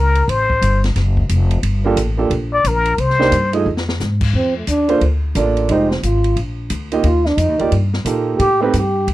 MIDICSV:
0, 0, Header, 1, 6, 480
1, 0, Start_track
1, 0, Key_signature, -2, "major"
1, 0, Tempo, 338409
1, 396, Time_signature, 4, 2, 24, 8
1, 12963, End_track
2, 0, Start_track
2, 0, Title_t, "Muted trumpet"
2, 0, Program_c, 0, 59
2, 0, Note_on_c, 0, 70, 79
2, 419, Note_on_c, 0, 72, 75
2, 440, Note_off_c, 0, 70, 0
2, 1190, Note_off_c, 0, 72, 0
2, 3600, Note_on_c, 0, 74, 106
2, 3795, Note_on_c, 0, 70, 87
2, 3816, Note_off_c, 0, 74, 0
2, 4257, Note_on_c, 0, 72, 88
2, 4278, Note_off_c, 0, 70, 0
2, 5029, Note_off_c, 0, 72, 0
2, 12963, End_track
3, 0, Start_track
3, 0, Title_t, "Grand piano"
3, 0, Program_c, 1, 0
3, 2616, Note_on_c, 1, 58, 82
3, 2631, Note_on_c, 1, 62, 72
3, 2633, Note_on_c, 1, 65, 78
3, 2639, Note_on_c, 1, 67, 76
3, 2650, Note_on_c, 1, 69, 87
3, 2777, Note_off_c, 1, 58, 0
3, 2784, Note_off_c, 1, 62, 0
3, 2785, Note_off_c, 1, 65, 0
3, 2788, Note_off_c, 1, 67, 0
3, 2793, Note_off_c, 1, 69, 0
3, 3084, Note_on_c, 1, 58, 67
3, 3094, Note_on_c, 1, 62, 65
3, 3098, Note_on_c, 1, 65, 60
3, 3106, Note_on_c, 1, 67, 61
3, 3108, Note_on_c, 1, 69, 76
3, 3251, Note_off_c, 1, 58, 0
3, 3255, Note_off_c, 1, 62, 0
3, 3258, Note_off_c, 1, 65, 0
3, 3262, Note_off_c, 1, 67, 0
3, 3262, Note_off_c, 1, 69, 0
3, 4527, Note_on_c, 1, 58, 85
3, 4527, Note_on_c, 1, 62, 73
3, 4538, Note_on_c, 1, 63, 76
3, 4542, Note_on_c, 1, 67, 76
3, 4548, Note_on_c, 1, 72, 85
3, 4692, Note_off_c, 1, 58, 0
3, 4692, Note_off_c, 1, 62, 0
3, 4698, Note_off_c, 1, 63, 0
3, 4699, Note_off_c, 1, 67, 0
3, 4702, Note_off_c, 1, 72, 0
3, 5009, Note_on_c, 1, 57, 75
3, 5014, Note_on_c, 1, 63, 65
3, 5016, Note_on_c, 1, 65, 63
3, 5024, Note_on_c, 1, 68, 63
3, 5034, Note_on_c, 1, 75, 72
3, 5173, Note_off_c, 1, 57, 0
3, 5175, Note_off_c, 1, 63, 0
3, 5176, Note_off_c, 1, 65, 0
3, 5180, Note_off_c, 1, 68, 0
3, 5185, Note_off_c, 1, 75, 0
3, 6927, Note_on_c, 1, 58, 73
3, 6932, Note_on_c, 1, 62, 67
3, 6938, Note_on_c, 1, 65, 66
3, 6945, Note_on_c, 1, 69, 64
3, 6948, Note_on_c, 1, 72, 82
3, 7092, Note_off_c, 1, 58, 0
3, 7095, Note_off_c, 1, 62, 0
3, 7098, Note_off_c, 1, 65, 0
3, 7101, Note_off_c, 1, 69, 0
3, 7103, Note_off_c, 1, 72, 0
3, 7594, Note_on_c, 1, 58, 63
3, 7605, Note_on_c, 1, 62, 64
3, 7609, Note_on_c, 1, 65, 59
3, 7615, Note_on_c, 1, 69, 59
3, 7623, Note_on_c, 1, 74, 71
3, 8075, Note_off_c, 1, 58, 0
3, 8076, Note_off_c, 1, 65, 0
3, 8080, Note_off_c, 1, 62, 0
3, 8084, Note_on_c, 1, 56, 60
3, 8086, Note_off_c, 1, 69, 0
3, 8090, Note_off_c, 1, 74, 0
3, 8097, Note_on_c, 1, 63, 55
3, 8098, Note_on_c, 1, 65, 53
3, 8103, Note_on_c, 1, 67, 58
3, 8113, Note_on_c, 1, 72, 68
3, 8353, Note_off_c, 1, 56, 0
3, 8359, Note_off_c, 1, 63, 0
3, 8360, Note_off_c, 1, 65, 0
3, 8362, Note_off_c, 1, 67, 0
3, 8367, Note_off_c, 1, 72, 0
3, 9813, Note_on_c, 1, 58, 73
3, 9817, Note_on_c, 1, 63, 71
3, 9818, Note_on_c, 1, 65, 63
3, 9831, Note_on_c, 1, 67, 66
3, 9837, Note_on_c, 1, 75, 75
3, 9975, Note_off_c, 1, 58, 0
3, 9977, Note_off_c, 1, 63, 0
3, 9978, Note_off_c, 1, 65, 0
3, 9984, Note_off_c, 1, 67, 0
3, 9987, Note_off_c, 1, 75, 0
3, 10757, Note_on_c, 1, 58, 68
3, 10766, Note_on_c, 1, 63, 63
3, 10779, Note_on_c, 1, 65, 63
3, 10784, Note_on_c, 1, 74, 73
3, 10786, Note_on_c, 1, 67, 65
3, 10927, Note_off_c, 1, 58, 0
3, 10931, Note_off_c, 1, 63, 0
3, 10938, Note_off_c, 1, 65, 0
3, 10940, Note_off_c, 1, 74, 0
3, 10941, Note_off_c, 1, 67, 0
3, 11416, Note_on_c, 1, 58, 61
3, 11425, Note_on_c, 1, 63, 54
3, 11433, Note_on_c, 1, 65, 52
3, 11442, Note_on_c, 1, 67, 58
3, 11449, Note_on_c, 1, 69, 67
3, 11905, Note_off_c, 1, 58, 0
3, 11909, Note_off_c, 1, 63, 0
3, 11913, Note_off_c, 1, 65, 0
3, 11918, Note_off_c, 1, 67, 0
3, 11921, Note_off_c, 1, 69, 0
3, 12205, Note_on_c, 1, 57, 81
3, 12218, Note_on_c, 1, 60, 77
3, 12224, Note_on_c, 1, 63, 73
3, 12235, Note_on_c, 1, 67, 73
3, 12235, Note_on_c, 1, 71, 87
3, 12370, Note_off_c, 1, 57, 0
3, 12376, Note_off_c, 1, 60, 0
3, 12379, Note_off_c, 1, 63, 0
3, 12385, Note_off_c, 1, 67, 0
3, 12385, Note_off_c, 1, 71, 0
3, 12963, End_track
4, 0, Start_track
4, 0, Title_t, "Trombone"
4, 0, Program_c, 2, 57
4, 6179, Note_on_c, 2, 60, 73
4, 6450, Note_off_c, 2, 60, 0
4, 6480, Note_on_c, 2, 57, 50
4, 6640, Note_on_c, 2, 62, 86
4, 6661, Note_off_c, 2, 57, 0
4, 7118, Note_off_c, 2, 62, 0
4, 8088, Note_on_c, 2, 63, 86
4, 8364, Note_off_c, 2, 63, 0
4, 8382, Note_on_c, 2, 60, 52
4, 8563, Note_on_c, 2, 65, 78
4, 8584, Note_off_c, 2, 60, 0
4, 9040, Note_off_c, 2, 65, 0
4, 9994, Note_on_c, 2, 65, 81
4, 10299, Note_on_c, 2, 62, 81
4, 10321, Note_off_c, 2, 65, 0
4, 10465, Note_on_c, 2, 63, 92
4, 10486, Note_off_c, 2, 62, 0
4, 10950, Note_off_c, 2, 63, 0
4, 11901, Note_on_c, 2, 67, 101
4, 12189, Note_off_c, 2, 67, 0
4, 12247, Note_on_c, 2, 63, 56
4, 12434, Note_on_c, 2, 67, 88
4, 12455, Note_off_c, 2, 63, 0
4, 12893, Note_off_c, 2, 67, 0
4, 12963, End_track
5, 0, Start_track
5, 0, Title_t, "Upright bass"
5, 0, Program_c, 3, 32
5, 0, Note_on_c, 3, 37, 81
5, 376, Note_off_c, 3, 37, 0
5, 393, Note_on_c, 3, 33, 81
5, 860, Note_off_c, 3, 33, 0
5, 873, Note_on_c, 3, 31, 84
5, 1340, Note_off_c, 3, 31, 0
5, 1357, Note_on_c, 3, 30, 81
5, 1822, Note_off_c, 3, 30, 0
5, 1836, Note_on_c, 3, 29, 90
5, 2301, Note_off_c, 3, 29, 0
5, 2308, Note_on_c, 3, 31, 76
5, 2778, Note_off_c, 3, 31, 0
5, 2785, Note_on_c, 3, 33, 84
5, 3256, Note_off_c, 3, 33, 0
5, 3266, Note_on_c, 3, 34, 77
5, 3736, Note_off_c, 3, 34, 0
5, 3750, Note_on_c, 3, 34, 83
5, 4218, Note_off_c, 3, 34, 0
5, 4229, Note_on_c, 3, 36, 77
5, 4698, Note_off_c, 3, 36, 0
5, 4707, Note_on_c, 3, 43, 82
5, 5176, Note_off_c, 3, 43, 0
5, 5188, Note_on_c, 3, 41, 82
5, 5657, Note_off_c, 3, 41, 0
5, 5678, Note_on_c, 3, 44, 84
5, 6138, Note_off_c, 3, 44, 0
5, 6146, Note_on_c, 3, 41, 77
5, 6616, Note_off_c, 3, 41, 0
5, 6629, Note_on_c, 3, 39, 79
5, 7098, Note_off_c, 3, 39, 0
5, 7105, Note_on_c, 3, 38, 72
5, 7576, Note_off_c, 3, 38, 0
5, 7590, Note_on_c, 3, 33, 84
5, 8059, Note_off_c, 3, 33, 0
5, 8070, Note_on_c, 3, 29, 75
5, 8539, Note_off_c, 3, 29, 0
5, 8551, Note_on_c, 3, 32, 72
5, 9013, Note_off_c, 3, 32, 0
5, 9021, Note_on_c, 3, 34, 78
5, 9494, Note_off_c, 3, 34, 0
5, 9507, Note_on_c, 3, 38, 80
5, 9968, Note_off_c, 3, 38, 0
5, 9976, Note_on_c, 3, 39, 81
5, 10447, Note_off_c, 3, 39, 0
5, 10456, Note_on_c, 3, 41, 79
5, 10615, Note_off_c, 3, 41, 0
5, 10615, Note_on_c, 3, 39, 58
5, 10774, Note_off_c, 3, 39, 0
5, 10782, Note_on_c, 3, 38, 61
5, 10937, Note_off_c, 3, 38, 0
5, 10945, Note_on_c, 3, 43, 81
5, 11406, Note_off_c, 3, 43, 0
5, 11414, Note_on_c, 3, 46, 77
5, 11889, Note_off_c, 3, 46, 0
5, 11902, Note_on_c, 3, 45, 81
5, 12373, Note_off_c, 3, 45, 0
5, 12387, Note_on_c, 3, 43, 81
5, 12855, Note_off_c, 3, 43, 0
5, 12865, Note_on_c, 3, 38, 76
5, 12963, Note_off_c, 3, 38, 0
5, 12963, End_track
6, 0, Start_track
6, 0, Title_t, "Drums"
6, 216, Note_on_c, 9, 51, 49
6, 358, Note_off_c, 9, 51, 0
6, 399, Note_on_c, 9, 36, 22
6, 410, Note_on_c, 9, 51, 64
6, 541, Note_off_c, 9, 36, 0
6, 552, Note_off_c, 9, 51, 0
6, 705, Note_on_c, 9, 36, 51
6, 847, Note_off_c, 9, 36, 0
6, 879, Note_on_c, 9, 36, 23
6, 883, Note_on_c, 9, 44, 51
6, 883, Note_on_c, 9, 51, 73
6, 1021, Note_off_c, 9, 36, 0
6, 1024, Note_off_c, 9, 44, 0
6, 1024, Note_off_c, 9, 51, 0
6, 1188, Note_on_c, 9, 51, 48
6, 1191, Note_on_c, 9, 38, 50
6, 1330, Note_off_c, 9, 51, 0
6, 1333, Note_off_c, 9, 38, 0
6, 1356, Note_on_c, 9, 51, 59
6, 1359, Note_on_c, 9, 36, 19
6, 1359, Note_on_c, 9, 38, 39
6, 1498, Note_off_c, 9, 51, 0
6, 1501, Note_off_c, 9, 36, 0
6, 1501, Note_off_c, 9, 38, 0
6, 1661, Note_on_c, 9, 36, 53
6, 1802, Note_off_c, 9, 36, 0
6, 1833, Note_on_c, 9, 44, 55
6, 1833, Note_on_c, 9, 51, 76
6, 1837, Note_on_c, 9, 36, 17
6, 1975, Note_off_c, 9, 44, 0
6, 1975, Note_off_c, 9, 51, 0
6, 1979, Note_off_c, 9, 36, 0
6, 2135, Note_on_c, 9, 51, 53
6, 2277, Note_off_c, 9, 51, 0
6, 2311, Note_on_c, 9, 51, 69
6, 2314, Note_on_c, 9, 36, 20
6, 2453, Note_off_c, 9, 51, 0
6, 2456, Note_off_c, 9, 36, 0
6, 2791, Note_on_c, 9, 44, 54
6, 2791, Note_on_c, 9, 51, 75
6, 2793, Note_on_c, 9, 36, 22
6, 2933, Note_off_c, 9, 44, 0
6, 2933, Note_off_c, 9, 51, 0
6, 2935, Note_off_c, 9, 36, 0
6, 3271, Note_on_c, 9, 36, 26
6, 3271, Note_on_c, 9, 51, 55
6, 3413, Note_off_c, 9, 36, 0
6, 3413, Note_off_c, 9, 51, 0
6, 3751, Note_on_c, 9, 44, 61
6, 3751, Note_on_c, 9, 51, 72
6, 3752, Note_on_c, 9, 36, 22
6, 3893, Note_off_c, 9, 44, 0
6, 3893, Note_off_c, 9, 51, 0
6, 3894, Note_off_c, 9, 36, 0
6, 4047, Note_on_c, 9, 51, 50
6, 4189, Note_off_c, 9, 51, 0
6, 4227, Note_on_c, 9, 51, 65
6, 4230, Note_on_c, 9, 36, 25
6, 4369, Note_off_c, 9, 51, 0
6, 4372, Note_off_c, 9, 36, 0
6, 4393, Note_on_c, 9, 38, 27
6, 4535, Note_off_c, 9, 38, 0
6, 4552, Note_on_c, 9, 38, 46
6, 4694, Note_off_c, 9, 38, 0
6, 4707, Note_on_c, 9, 44, 48
6, 4707, Note_on_c, 9, 51, 73
6, 4709, Note_on_c, 9, 36, 28
6, 4849, Note_off_c, 9, 44, 0
6, 4849, Note_off_c, 9, 51, 0
6, 4850, Note_off_c, 9, 36, 0
6, 5007, Note_on_c, 9, 51, 48
6, 5149, Note_off_c, 9, 51, 0
6, 5347, Note_on_c, 9, 38, 65
6, 5488, Note_off_c, 9, 38, 0
6, 5512, Note_on_c, 9, 38, 85
6, 5654, Note_off_c, 9, 38, 0
6, 5669, Note_on_c, 9, 44, 57
6, 5672, Note_on_c, 9, 38, 55
6, 5811, Note_off_c, 9, 44, 0
6, 5814, Note_off_c, 9, 38, 0
6, 5968, Note_on_c, 9, 49, 77
6, 5974, Note_on_c, 9, 36, 70
6, 6110, Note_off_c, 9, 49, 0
6, 6115, Note_off_c, 9, 36, 0
6, 6151, Note_on_c, 9, 36, 27
6, 6293, Note_off_c, 9, 36, 0
6, 6624, Note_on_c, 9, 44, 58
6, 6624, Note_on_c, 9, 51, 59
6, 6633, Note_on_c, 9, 36, 20
6, 6766, Note_off_c, 9, 44, 0
6, 6766, Note_off_c, 9, 51, 0
6, 6774, Note_off_c, 9, 36, 0
6, 6930, Note_on_c, 9, 51, 45
6, 7072, Note_off_c, 9, 51, 0
6, 7108, Note_on_c, 9, 51, 57
6, 7113, Note_on_c, 9, 36, 24
6, 7250, Note_off_c, 9, 51, 0
6, 7255, Note_off_c, 9, 36, 0
6, 7588, Note_on_c, 9, 44, 60
6, 7588, Note_on_c, 9, 51, 69
6, 7595, Note_on_c, 9, 36, 23
6, 7730, Note_off_c, 9, 44, 0
6, 7730, Note_off_c, 9, 51, 0
6, 7737, Note_off_c, 9, 36, 0
6, 7895, Note_on_c, 9, 51, 46
6, 8036, Note_off_c, 9, 51, 0
6, 8065, Note_on_c, 9, 51, 62
6, 8074, Note_on_c, 9, 36, 20
6, 8207, Note_off_c, 9, 51, 0
6, 8215, Note_off_c, 9, 36, 0
6, 8382, Note_on_c, 9, 38, 49
6, 8524, Note_off_c, 9, 38, 0
6, 8555, Note_on_c, 9, 36, 22
6, 8556, Note_on_c, 9, 44, 55
6, 8556, Note_on_c, 9, 51, 64
6, 8696, Note_off_c, 9, 36, 0
6, 8697, Note_off_c, 9, 44, 0
6, 8697, Note_off_c, 9, 51, 0
6, 8851, Note_on_c, 9, 51, 45
6, 8993, Note_off_c, 9, 51, 0
6, 9028, Note_on_c, 9, 51, 57
6, 9029, Note_on_c, 9, 36, 24
6, 9170, Note_off_c, 9, 51, 0
6, 9171, Note_off_c, 9, 36, 0
6, 9500, Note_on_c, 9, 44, 60
6, 9500, Note_on_c, 9, 51, 72
6, 9508, Note_on_c, 9, 36, 20
6, 9642, Note_off_c, 9, 44, 0
6, 9642, Note_off_c, 9, 51, 0
6, 9650, Note_off_c, 9, 36, 0
6, 9808, Note_on_c, 9, 51, 47
6, 9950, Note_off_c, 9, 51, 0
6, 9978, Note_on_c, 9, 51, 66
6, 9983, Note_on_c, 9, 36, 27
6, 10120, Note_off_c, 9, 51, 0
6, 10125, Note_off_c, 9, 36, 0
6, 10291, Note_on_c, 9, 38, 41
6, 10432, Note_off_c, 9, 38, 0
6, 10464, Note_on_c, 9, 36, 22
6, 10464, Note_on_c, 9, 44, 48
6, 10464, Note_on_c, 9, 51, 67
6, 10606, Note_off_c, 9, 36, 0
6, 10606, Note_off_c, 9, 44, 0
6, 10606, Note_off_c, 9, 51, 0
6, 10770, Note_on_c, 9, 51, 43
6, 10912, Note_off_c, 9, 51, 0
6, 10946, Note_on_c, 9, 36, 18
6, 10946, Note_on_c, 9, 51, 59
6, 11088, Note_off_c, 9, 36, 0
6, 11088, Note_off_c, 9, 51, 0
6, 11253, Note_on_c, 9, 38, 53
6, 11395, Note_off_c, 9, 38, 0
6, 11423, Note_on_c, 9, 36, 25
6, 11425, Note_on_c, 9, 44, 52
6, 11425, Note_on_c, 9, 51, 72
6, 11564, Note_off_c, 9, 36, 0
6, 11567, Note_off_c, 9, 44, 0
6, 11567, Note_off_c, 9, 51, 0
6, 11907, Note_on_c, 9, 36, 30
6, 11908, Note_on_c, 9, 51, 65
6, 12048, Note_off_c, 9, 36, 0
6, 12050, Note_off_c, 9, 51, 0
6, 12389, Note_on_c, 9, 44, 58
6, 12389, Note_on_c, 9, 51, 65
6, 12391, Note_on_c, 9, 36, 25
6, 12531, Note_off_c, 9, 44, 0
6, 12531, Note_off_c, 9, 51, 0
6, 12532, Note_off_c, 9, 36, 0
6, 12871, Note_on_c, 9, 36, 17
6, 12874, Note_on_c, 9, 51, 60
6, 12963, Note_off_c, 9, 36, 0
6, 12963, Note_off_c, 9, 51, 0
6, 12963, End_track
0, 0, End_of_file